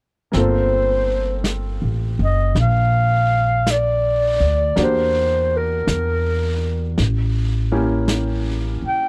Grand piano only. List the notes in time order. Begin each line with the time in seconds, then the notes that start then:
0.32 A#3 C4 F4
0.37 A4
4.76 A#3 D4 F#4
4.80 G4
7.72 A#3 C#4 E4 G4